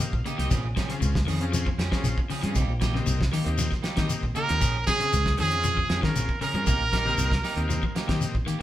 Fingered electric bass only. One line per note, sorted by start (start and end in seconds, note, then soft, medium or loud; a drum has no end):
0.13 0.23 A#1 medium
0.25 muted fingered electric bass stroke soft
0.39 0.49 C2 medium
0.52 0.73 A#1 loud
1.01 1.23 C#2 loud
1.26 1.69 F2 loud
1.78 1.89 F2 loud
2.04 2.15 A#1 medium
2.30 muted fingered electric bass stroke soft
2.43 2.54 G2 medium
2.57 2.67 C2 loud
2.68 3.00 A#1 medium
3.07 3.29 C2 loud
3.46 3.67 D#2 loud
4.24 4.34 A#1 medium
4.36 muted fingered electric bass stroke soft
4.50 4.60 D#2 medium
4.62 4.83 A#1 medium
5.14 5.34 C#2 loud
5.40 5.81 F2 medium
5.90 6.00 F2 loud
6.16 6.26 A#1 medium
6.41 muted fingered electric bass stroke soft
6.54 6.64 G2 loud
6.67 6.78 C2 medium
6.80 7.12 A#1 medium
7.18 7.39 C2 loud
7.56 7.78 D#2 loud
8.35 8.45 A#1 medium
8.47 muted fingered electric bass stroke soft